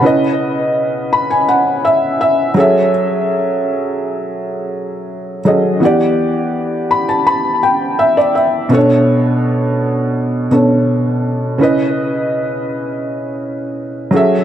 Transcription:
Already playing: F#5
0.01 C#3 C#4 E4
0.05 B4 D#5
1.13 B5
1.30 G#5
1.49 F#5
1.85 E5
2.21 E5
2.54 F#3 C#4 G#4 C#5
2.58 A4 E5
5.45 F#3 C#4 G#4 A4 D#5
5.80 E3 B3 F#5
5.84 G4 D5
6.91 B5
7.09 A5
7.27 B5
7.63 G5
7.99 E5
8.17 D5
8.35 E5
8.69 B2 B3 C#4
8.73 A4 C#5
8.78 D4
10.51 B2 B3 D4 A4 C#5
11.58 C#3 C#4 E4 B4
11.63 D#5
14.11 F#3 C#4 G#4
14.15 A4 E5

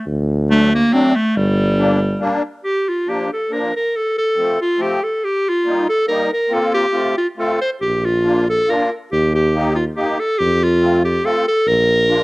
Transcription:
0.06 D2
0.49 F#3 A3 D4
0.75 A#3
0.91 F#3 A3 C4 D4
1.16 A3
1.36 G1 G3
1.77 G3 A#3 D4
2.19 G3 A#3 D4
2.64 G4
2.89 F4
3.07 F3 A#3 D4 G4
3.33 A4
3.50 F3 A#3 D4 A#4
3.76 A#4
3.96 A4
4.18 A4
4.36 F3 A3 C4
4.61 F4
4.78 F3 A3 C4
4.82 G4
5.04 A4
5.24 G4
5.49 F4
5.65 G3 A#3 D#4
5.89 A4
6.07 G3 A#3 D#4 A#4
6.33 A#4
6.49 A#3 C4 F4
6.53 A4
6.74 G4
6.92 A3 C4 F4
7.18 F4
7.37 A3 C4 F4 A4
7.61 C5
7.81 A#1 G4
8.05 F4
8.23 A#3 D4 F4
8.50 A4
8.68 A#3 D4 F4 A#4
9.12 D#2 G4
9.35 G4
9.55 A#3 D#4 G4
9.75 F4
9.96 A#3 D#4 G4
10.20 A4
10.38 F2 G4
10.64 F4
10.81 A3 C4 F4
11.04 G4
11.23 A3 C4 F4 A4
11.48 A4
11.66 A#1 A#4
12.08 A#3 D4 F4

